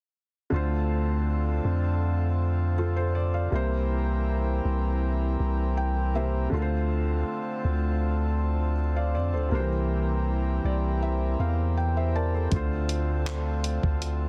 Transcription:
0.50 1.61 D2 medium
0.50 3.47 D3 medium
0.50 3.49 D3 medium
0.50 3.48 A3 medium
0.50 6.48 C4 medium
0.50 3.49 F4 medium
0.50 2.74 F4 medium
0.50 3.49 A4 medium
0.56 2.75 C5 medium
1.65 3.48 F2 medium
2.78 2.96 F4 medium
2.78 2.95 A4 medium
2.96 3.14 A4 medium
2.96 3.14 C5 medium
3.15 3.33 D5 medium
3.34 3.70 D5 soft
3.34 3.69 F5 medium
3.50 4.61 C2 loud
3.50 6.10 C3 medium
3.50 6.49 E3 medium
3.50 6.10 A#3 medium
3.50 6.11 E4 medium
3.50 6.49 G4 medium
3.50 6.49 A#4 medium
3.55 6.12 C5 medium
4.65 5.37 C2 medium
5.40 6.48 C2 loud
5.77 6.12 G5 medium
6.14 6.52 C3 medium
6.14 6.52 A#3 soft
6.14 6.53 E4 medium
6.14 6.53 C5 medium
6.14 6.50 E5 medium
6.50 7.24 D2 loud
6.50 8.72 D3 medium
6.50 9.49 D3 medium
6.50 8.73 A3 medium
6.50 14.29 C4 medium
6.50 9.49 F4 medium
6.50 9.49 A4 medium
6.54 8.74 F4 medium
6.54 6.60 A#4 medium
6.62 8.78 C5 medium
7.65 9.16 D2 loud
8.96 9.13 D5 medium
8.96 9.14 F5 medium
9.14 9.34 F2 loud
9.14 9.32 D5 medium
9.33 9.51 D2 medium
9.33 9.69 A4 medium
9.33 9.54 C5 medium
9.49 10.60 C2 loud
9.49 12.47 C3 medium
9.49 12.49 E3 medium
9.49 12.48 A#3 medium
9.49 9.59 D4 medium
9.49 12.49 G4 medium
9.49 12.49 A#4 medium
9.55 11.75 C5 medium
9.60 12.52 E3 medium
10.64 11.36 C2 loud
10.64 11.00 D5 medium
11.03 11.37 E5 medium
11.39 12.48 E2 loud
11.39 11.75 F5 medium
11.77 12.12 G5 medium
11.97 12.14 C5 medium
11.97 12.14 E5 medium
12.16 12.33 A#4 medium
12.16 12.33 D5 medium
12.16 12.50 A5 medium
12.34 12.70 A4 soft
12.34 12.55 C5 medium
12.51 13.79 D2 loud
12.51 14.29 D3 medium
12.51 14.29 A3 medium
12.51 14.29 F4 medium
12.51 14.29 A4 medium
12.51 kick loud
12.51 closed hi-hat medium
12.56 14.29 C5 medium
12.89 closed hi-hat medium
13.26 clap loud
13.26 closed hi-hat medium
13.64 closed hi-hat medium
13.83 14.29 D2 loud
13.83 kick medium
14.02 closed hi-hat medium

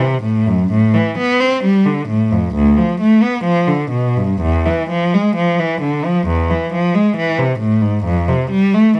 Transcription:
0.00 0.22 C3 soft
0.22 0.46 A2 soft
0.46 0.70 F#2 soft
0.71 0.93 A2 medium
0.94 1.17 E3 soft
1.18 1.40 B3 medium
1.40 1.63 C4 soft
1.63 1.86 G3 soft
1.86 2.09 D3 soft
2.08 2.31 A2 soft
2.31 2.54 F2 soft
2.54 2.77 D2 medium
2.77 3.00 F3 soft
3.00 3.22 A3 soft
3.22 3.45 B3 soft
3.44 3.67 F3 medium
3.67 3.91 D3 soft
3.91 4.15 B2 soft
4.16 4.41 G2 soft
4.41 4.65 E2 medium
4.66 4.89 E3 soft
4.90 5.12 F3 medium
5.14 5.36 G#3 soft
5.36 5.58 F3 soft
5.59 5.81 E3 medium
5.81 6.03 D3 soft
6.05 6.27 F3 medium
6.27 6.49 E2 soft
6.50 6.72 E3 soft
6.73 6.94 F3 soft
6.94 7.16 G#3 soft
7.17 7.38 E3 medium
7.39 7.60 C3 soft
7.59 7.81 A2 soft
7.82 8.04 G#2 soft
8.04 8.26 F2 medium
8.28 8.50 C3 soft
8.51 8.72 G3 medium
8.74 8.96 A3 soft

